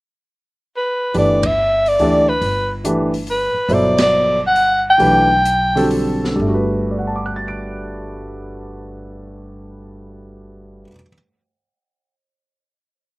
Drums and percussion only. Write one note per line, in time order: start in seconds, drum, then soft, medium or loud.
1.14 open hi-hat soft
1.43 kick medium
1.43 ride medium
1.86 open hi-hat soft
1.99 open hi-hat soft
2.42 open hi-hat soft
2.85 closed hi-hat soft
3.14 open hi-hat soft
3.27 open hi-hat soft
3.69 open hi-hat soft
3.98 snare medium
3.98 ride medium
4.56 open hi-hat soft
5.00 open hi-hat soft
5.45 closed hi-hat soft
5.77 open hi-hat soft
5.91 open hi-hat soft
6.24 snare soft